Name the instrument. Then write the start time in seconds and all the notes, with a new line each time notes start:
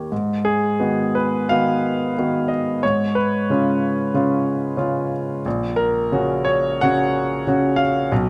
grand piano
Already playing: D#3 A#3 G4
0.12 G#2
0.45 G#4
0.80 D#3 B3 F#4
1.15 B4
1.49 D#3 B3 F#4 F5
2.18 D#3 B3 F#4
2.48 D#5
2.83 G#2 C#5
3.15 B4
3.50 C#3 C#4 F4
4.14 C#3 C#4 F4
4.77 C#3 C#4 F4
5.46 A#1
5.76 A#4
6.12 C#3 C#4 F#4
6.45 C#5
6.81 C#3 C#4 F#4 F#5
7.47 C#3 C#4 F#4
7.76 F5
8.12 B1